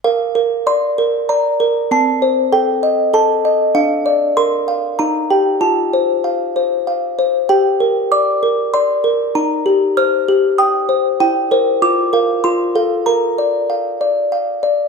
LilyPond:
\new Staff \with { instrumentName = "Music box" } { \time 3/4 \key bes \major \tempo 4 = 96 << { f''4 c'''4 bes''4 | a''4 g''4 a''4 | f''4 c'''4 bes''4 | a''2~ a''8 r8 |
g''4 d'''4 c'''4 | bes''4 f'''4 ees'''4 | g''4 d'''4 c'''4 | bes''2~ bes''8 r8 | } \\ { bes'8 bes'8 d''8 bes'8 d''8 bes'8 | c'8 c''8 a'8 ees''8 a'8 ees''8 | d'8 d''8 bes'8 f''8 ees'8 <g' g''>8 | f'8 c''8 f''8 c''8 f''8 c''8 |
g'8 bes'8 d''8 bes'8 d''8 bes'8 | ees'8 g'8 c''8 g'8 g''8 c''8 | e'8 <bes' c''>8 f'8 <bes' f''>8 f'8 <a' f''>8 | bes'8 d''8 f''8 d''8 f''8 d''8 | } >> }